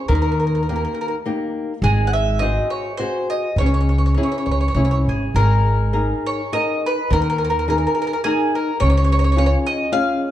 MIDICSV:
0, 0, Header, 1, 4, 480
1, 0, Start_track
1, 0, Tempo, 578592
1, 79, Time_signature, 3, 2, 24, 8
1, 2478, Tempo, 589391
1, 5358, Tempo, 567644
1, 8561, End_track
2, 0, Start_track
2, 0, Title_t, "Mandolin"
2, 0, Program_c, 0, 25
2, 69, Note_on_c, 0, 70, 64
2, 114, Note_off_c, 0, 70, 0
2, 124, Note_on_c, 0, 70, 50
2, 171, Note_off_c, 0, 70, 0
2, 181, Note_on_c, 0, 70, 54
2, 253, Note_off_c, 0, 70, 0
2, 263, Note_on_c, 0, 70, 46
2, 319, Note_off_c, 0, 70, 0
2, 329, Note_on_c, 0, 70, 45
2, 379, Note_off_c, 0, 70, 0
2, 389, Note_on_c, 0, 70, 42
2, 444, Note_off_c, 0, 70, 0
2, 454, Note_on_c, 0, 70, 40
2, 510, Note_off_c, 0, 70, 0
2, 519, Note_on_c, 0, 70, 33
2, 564, Note_off_c, 0, 70, 0
2, 574, Note_on_c, 0, 70, 44
2, 618, Note_off_c, 0, 70, 0
2, 628, Note_on_c, 0, 70, 41
2, 691, Note_off_c, 0, 70, 0
2, 701, Note_on_c, 0, 70, 39
2, 767, Note_off_c, 0, 70, 0
2, 783, Note_on_c, 0, 70, 38
2, 828, Note_off_c, 0, 70, 0
2, 838, Note_on_c, 0, 70, 44
2, 887, Note_off_c, 0, 70, 0
2, 896, Note_on_c, 0, 70, 40
2, 951, Note_off_c, 0, 70, 0
2, 1524, Note_on_c, 0, 68, 90
2, 1719, Note_off_c, 0, 68, 0
2, 1719, Note_on_c, 0, 78, 70
2, 1766, Note_off_c, 0, 78, 0
2, 1770, Note_on_c, 0, 76, 77
2, 1979, Note_off_c, 0, 76, 0
2, 1984, Note_on_c, 0, 75, 85
2, 2239, Note_off_c, 0, 75, 0
2, 2242, Note_on_c, 0, 73, 64
2, 2458, Note_off_c, 0, 73, 0
2, 2467, Note_on_c, 0, 72, 76
2, 2728, Note_off_c, 0, 72, 0
2, 2731, Note_on_c, 0, 75, 71
2, 2940, Note_off_c, 0, 75, 0
2, 2963, Note_on_c, 0, 73, 79
2, 3017, Note_off_c, 0, 73, 0
2, 3027, Note_on_c, 0, 73, 55
2, 3082, Note_off_c, 0, 73, 0
2, 3092, Note_on_c, 0, 73, 60
2, 3135, Note_off_c, 0, 73, 0
2, 3145, Note_on_c, 0, 73, 47
2, 3203, Note_off_c, 0, 73, 0
2, 3213, Note_on_c, 0, 73, 49
2, 3269, Note_off_c, 0, 73, 0
2, 3288, Note_on_c, 0, 73, 46
2, 3337, Note_off_c, 0, 73, 0
2, 3350, Note_on_c, 0, 73, 48
2, 3397, Note_off_c, 0, 73, 0
2, 3421, Note_on_c, 0, 73, 39
2, 3464, Note_off_c, 0, 73, 0
2, 3492, Note_on_c, 0, 73, 52
2, 3535, Note_off_c, 0, 73, 0
2, 3560, Note_on_c, 0, 73, 44
2, 3603, Note_off_c, 0, 73, 0
2, 3612, Note_on_c, 0, 73, 45
2, 3661, Note_off_c, 0, 73, 0
2, 3675, Note_on_c, 0, 73, 37
2, 3712, Note_off_c, 0, 73, 0
2, 3722, Note_on_c, 0, 73, 48
2, 3774, Note_off_c, 0, 73, 0
2, 3796, Note_on_c, 0, 73, 46
2, 3841, Note_off_c, 0, 73, 0
2, 3858, Note_on_c, 0, 73, 56
2, 3899, Note_off_c, 0, 73, 0
2, 3909, Note_on_c, 0, 73, 50
2, 3962, Note_off_c, 0, 73, 0
2, 3992, Note_on_c, 0, 73, 53
2, 4034, Note_off_c, 0, 73, 0
2, 4044, Note_on_c, 0, 73, 51
2, 4098, Note_off_c, 0, 73, 0
2, 4190, Note_on_c, 0, 68, 46
2, 4408, Note_on_c, 0, 70, 88
2, 4416, Note_off_c, 0, 68, 0
2, 5106, Note_off_c, 0, 70, 0
2, 5147, Note_on_c, 0, 73, 68
2, 5361, Note_off_c, 0, 73, 0
2, 5364, Note_on_c, 0, 75, 81
2, 5603, Note_off_c, 0, 75, 0
2, 5646, Note_on_c, 0, 71, 75
2, 5866, Note_off_c, 0, 71, 0
2, 5869, Note_on_c, 0, 70, 90
2, 5921, Note_off_c, 0, 70, 0
2, 5944, Note_on_c, 0, 70, 67
2, 5992, Note_off_c, 0, 70, 0
2, 6012, Note_on_c, 0, 70, 73
2, 6059, Note_off_c, 0, 70, 0
2, 6085, Note_on_c, 0, 70, 61
2, 6128, Note_off_c, 0, 70, 0
2, 6138, Note_on_c, 0, 70, 61
2, 6172, Note_off_c, 0, 70, 0
2, 6183, Note_on_c, 0, 70, 61
2, 6232, Note_off_c, 0, 70, 0
2, 6261, Note_on_c, 0, 70, 61
2, 6301, Note_off_c, 0, 70, 0
2, 6352, Note_on_c, 0, 70, 78
2, 6409, Note_off_c, 0, 70, 0
2, 6420, Note_on_c, 0, 70, 54
2, 6476, Note_off_c, 0, 70, 0
2, 6495, Note_on_c, 0, 70, 53
2, 6546, Note_off_c, 0, 70, 0
2, 6561, Note_on_c, 0, 70, 52
2, 6612, Note_off_c, 0, 70, 0
2, 6621, Note_on_c, 0, 70, 71
2, 6656, Note_off_c, 0, 70, 0
2, 6666, Note_on_c, 0, 70, 56
2, 6708, Note_off_c, 0, 70, 0
2, 6719, Note_on_c, 0, 70, 65
2, 6775, Note_off_c, 0, 70, 0
2, 6810, Note_on_c, 0, 68, 89
2, 7048, Note_off_c, 0, 68, 0
2, 7073, Note_on_c, 0, 70, 66
2, 7277, Note_off_c, 0, 70, 0
2, 7283, Note_on_c, 0, 73, 88
2, 7347, Note_off_c, 0, 73, 0
2, 7365, Note_on_c, 0, 73, 65
2, 7421, Note_off_c, 0, 73, 0
2, 7430, Note_on_c, 0, 73, 68
2, 7479, Note_off_c, 0, 73, 0
2, 7490, Note_on_c, 0, 73, 64
2, 7545, Note_off_c, 0, 73, 0
2, 7555, Note_on_c, 0, 73, 63
2, 7603, Note_off_c, 0, 73, 0
2, 7613, Note_on_c, 0, 73, 63
2, 7647, Note_off_c, 0, 73, 0
2, 7657, Note_on_c, 0, 73, 63
2, 7712, Note_off_c, 0, 73, 0
2, 7722, Note_on_c, 0, 73, 58
2, 7766, Note_off_c, 0, 73, 0
2, 7776, Note_on_c, 0, 73, 77
2, 7832, Note_off_c, 0, 73, 0
2, 7842, Note_on_c, 0, 73, 64
2, 7907, Note_off_c, 0, 73, 0
2, 8015, Note_on_c, 0, 75, 85
2, 8236, Note_on_c, 0, 77, 95
2, 8246, Note_off_c, 0, 75, 0
2, 8561, Note_off_c, 0, 77, 0
2, 8561, End_track
3, 0, Start_track
3, 0, Title_t, "Nylon-string guitar"
3, 0, Program_c, 1, 24
3, 72, Note_on_c, 1, 51, 68
3, 541, Note_off_c, 1, 51, 0
3, 573, Note_on_c, 1, 58, 38
3, 578, Note_on_c, 1, 63, 39
3, 578, Note_on_c, 1, 67, 47
3, 950, Note_off_c, 1, 58, 0
3, 952, Note_off_c, 1, 67, 0
3, 954, Note_off_c, 1, 63, 0
3, 1042, Note_on_c, 1, 58, 44
3, 1046, Note_on_c, 1, 63, 45
3, 1047, Note_on_c, 1, 67, 47
3, 1424, Note_off_c, 1, 58, 0
3, 1426, Note_off_c, 1, 63, 0
3, 1427, Note_off_c, 1, 67, 0
3, 1522, Note_on_c, 1, 56, 66
3, 1984, Note_off_c, 1, 56, 0
3, 2002, Note_on_c, 1, 66, 37
3, 2005, Note_on_c, 1, 68, 38
3, 2011, Note_on_c, 1, 72, 49
3, 2386, Note_off_c, 1, 68, 0
3, 2387, Note_off_c, 1, 66, 0
3, 2391, Note_off_c, 1, 72, 0
3, 2484, Note_on_c, 1, 66, 46
3, 2491, Note_on_c, 1, 68, 41
3, 2496, Note_on_c, 1, 72, 47
3, 2863, Note_off_c, 1, 66, 0
3, 2867, Note_off_c, 1, 68, 0
3, 2871, Note_off_c, 1, 72, 0
3, 2980, Note_on_c, 1, 49, 59
3, 3431, Note_off_c, 1, 49, 0
3, 3442, Note_on_c, 1, 61, 43
3, 3447, Note_on_c, 1, 68, 44
3, 3448, Note_on_c, 1, 64, 36
3, 3825, Note_off_c, 1, 61, 0
3, 3828, Note_off_c, 1, 64, 0
3, 3828, Note_off_c, 1, 68, 0
3, 3921, Note_on_c, 1, 61, 37
3, 3925, Note_on_c, 1, 64, 38
3, 3925, Note_on_c, 1, 68, 40
3, 4308, Note_off_c, 1, 61, 0
3, 4309, Note_off_c, 1, 64, 0
3, 4310, Note_off_c, 1, 68, 0
3, 4413, Note_on_c, 1, 56, 62
3, 4873, Note_off_c, 1, 56, 0
3, 4875, Note_on_c, 1, 63, 44
3, 4877, Note_on_c, 1, 68, 44
3, 4881, Note_on_c, 1, 70, 43
3, 5259, Note_off_c, 1, 63, 0
3, 5259, Note_off_c, 1, 68, 0
3, 5262, Note_off_c, 1, 70, 0
3, 5358, Note_on_c, 1, 63, 42
3, 5363, Note_on_c, 1, 68, 37
3, 5366, Note_on_c, 1, 70, 50
3, 5749, Note_off_c, 1, 63, 0
3, 5752, Note_off_c, 1, 68, 0
3, 5752, Note_off_c, 1, 70, 0
3, 5849, Note_on_c, 1, 51, 66
3, 6316, Note_off_c, 1, 51, 0
3, 6335, Note_on_c, 1, 63, 51
3, 6339, Note_on_c, 1, 68, 43
3, 6340, Note_on_c, 1, 70, 49
3, 6718, Note_off_c, 1, 63, 0
3, 6720, Note_off_c, 1, 70, 0
3, 6721, Note_off_c, 1, 68, 0
3, 6814, Note_on_c, 1, 63, 49
3, 6816, Note_on_c, 1, 68, 38
3, 6819, Note_on_c, 1, 70, 55
3, 7195, Note_off_c, 1, 68, 0
3, 7197, Note_off_c, 1, 63, 0
3, 7199, Note_off_c, 1, 70, 0
3, 7285, Note_on_c, 1, 49, 74
3, 7748, Note_off_c, 1, 49, 0
3, 7757, Note_on_c, 1, 61, 44
3, 7761, Note_on_c, 1, 65, 45
3, 7766, Note_on_c, 1, 68, 54
3, 8140, Note_off_c, 1, 61, 0
3, 8143, Note_off_c, 1, 65, 0
3, 8145, Note_off_c, 1, 68, 0
3, 8231, Note_on_c, 1, 61, 49
3, 8232, Note_on_c, 1, 65, 45
3, 8235, Note_on_c, 1, 68, 56
3, 8561, Note_off_c, 1, 61, 0
3, 8561, Note_off_c, 1, 65, 0
3, 8561, Note_off_c, 1, 68, 0
3, 8561, End_track
4, 0, Start_track
4, 0, Title_t, "Upright bass"
4, 0, Program_c, 2, 32
4, 74, Note_on_c, 2, 39, 82
4, 698, Note_off_c, 2, 39, 0
4, 1508, Note_on_c, 2, 32, 94
4, 2136, Note_off_c, 2, 32, 0
4, 2947, Note_on_c, 2, 37, 83
4, 3426, Note_off_c, 2, 37, 0
4, 3683, Note_on_c, 2, 37, 56
4, 3890, Note_off_c, 2, 37, 0
4, 3911, Note_on_c, 2, 36, 64
4, 4146, Note_off_c, 2, 36, 0
4, 4166, Note_on_c, 2, 32, 62
4, 4374, Note_off_c, 2, 32, 0
4, 4397, Note_on_c, 2, 32, 76
4, 5020, Note_off_c, 2, 32, 0
4, 5854, Note_on_c, 2, 39, 80
4, 6478, Note_off_c, 2, 39, 0
4, 7297, Note_on_c, 2, 37, 76
4, 7912, Note_off_c, 2, 37, 0
4, 8561, End_track
0, 0, End_of_file